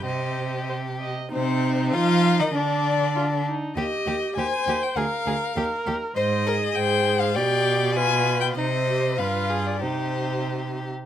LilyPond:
<<
  \new Staff \with { instrumentName = "Violin" } { \time 2/4 \key c \minor \tempo 4 = 99 ees''4 r4 | c''4 f''8. ees''16 | d''4. r8 | ees''4 aes''8. g''16 |
f''4. r8 | ees''4 g''8. f''16 | g''4 aes''8. g''16 | ees''4 f''8. d''16 |
c''4. r8 | }
  \new Staff \with { instrumentName = "Viola" } { \time 2/4 \key c \minor c''4 c''8 ees''8 | ees'2 | d'4 f'8 ees'8 | g'4 c''4 |
bes'4 bes'4 | c''8 aes'4. | g'4 f'4 | ees'8 g'8 f'4 |
ees'4. r8 | }
  \new Staff \with { instrumentName = "Violin" } { \time 2/4 \key c \minor g'4. r8 | c'4 f'8. ees'16 | d'4. r8 | g'8 g'8 g'8 g'8 |
aes'8 aes'8 g'8 g'8 | c''8 bes'8 c''4 | d''4 b'4 | c''4 b'8 aes'8 |
g'4. r8 | }
  \new Staff \with { instrumentName = "Cello" } { \clef bass \time 2/4 \key c \minor c4. r8 | c4 f8. ees16 | d4. r8 | ees,8 ees,8 ees,8 ees,8 |
d,8 d,8 ees,8 ees,8 | aes,4 aes,4 | b,2 | c4 g,4 |
c4. r8 | }
>>